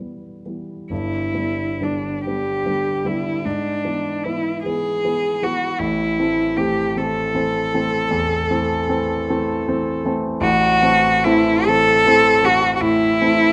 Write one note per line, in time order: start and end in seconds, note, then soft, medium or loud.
0.00 0.94 B2 soft
0.00 0.46 E3 soft
0.00 0.47 G3 soft
0.00 0.46 B3 soft
0.46 0.87 E3 soft
0.46 0.87 G3 soft
0.46 0.87 B3 soft
0.90 1.33 G1 soft
0.90 1.34 G2 soft
0.90 1.85 E4 medium
1.34 1.77 D3 soft
1.34 1.78 G3 soft
1.34 1.78 B3 soft
1.81 2.22 D3 soft
1.81 2.22 G3 soft
1.81 2.22 B3 soft
1.81 2.25 D4 medium
2.25 2.63 D3 soft
2.25 2.64 G3 soft
2.25 2.63 B3 soft
2.25 3.08 G4 medium
2.66 3.01 D3 soft
2.66 3.01 G3 soft
2.66 3.01 B3 soft
3.05 3.40 D3 soft
3.05 3.40 G3 soft
3.05 3.41 B3 soft
3.05 3.47 E4 medium
3.45 3.83 G#2 medium
3.45 4.26 D4 medium
3.85 4.21 E3 soft
3.85 4.21 B3 soft
4.24 4.62 E3 soft
4.24 4.61 B3 soft
4.24 4.62 E4 medium
4.63 5.01 E3 soft
4.63 5.01 B3 soft
4.63 5.45 G#4 medium
5.05 5.40 E3 soft
5.05 5.40 B3 soft
5.42 5.77 E3 soft
5.42 5.78 B3 soft
5.42 5.80 F#4 medium
5.79 6.18 A1 medium
5.79 6.18 A2 medium
5.79 6.59 E4 medium
6.19 6.54 E3 soft
6.19 6.54 A3 soft
6.19 6.55 C4 soft
6.57 6.93 E3 soft
6.57 6.93 A3 soft
6.57 6.93 C4 soft
6.57 6.99 G4 medium
6.96 7.32 E3 soft
6.96 7.32 A3 soft
6.96 7.32 C4 soft
6.96 10.05 A4 medium
7.34 7.70 E3 soft
7.34 7.70 A3 soft
7.34 7.71 C4 medium
7.74 8.09 E3 soft
7.74 8.09 A3 soft
7.74 8.09 C4 medium
8.11 8.49 E2 medium
8.50 8.86 E3 soft
8.50 8.86 A3 soft
8.50 8.86 C4 medium
8.89 9.25 E3 medium
8.89 9.25 A3 medium
8.89 9.25 C4 medium
9.30 9.64 E3 medium
9.30 9.65 A3 medium
9.30 9.65 C4 medium
9.68 10.02 E3 medium
9.68 10.02 A3 soft
9.68 10.02 C4 medium
10.05 10.39 E3 medium
10.05 10.39 A3 medium
10.05 10.39 C4 medium
10.41 10.80 A1 medium
10.41 10.81 A2 medium
10.41 11.26 F#4 loud
10.82 11.22 E3 medium
10.82 11.22 A3 medium
10.82 11.22 C4 medium
11.24 11.64 E3 medium
11.24 11.64 A3 medium
11.24 11.64 C4 medium
11.24 11.68 E4 loud
11.67 12.03 E3 medium
11.67 12.03 A3 medium
11.67 12.03 C4 medium
11.67 12.46 A4 loud
12.06 12.40 E3 medium
12.06 12.40 A3 medium
12.06 12.41 C4 medium
12.42 12.78 E3 medium
12.42 12.78 A3 medium
12.42 12.78 C4 medium
12.42 12.75 F#4 loud
12.76 12.82 F#4 medium
12.81 13.20 A2 medium
12.81 13.53 E4 loud
13.21 13.53 E3 soft
13.21 13.53 A3 medium
13.21 13.53 C4 medium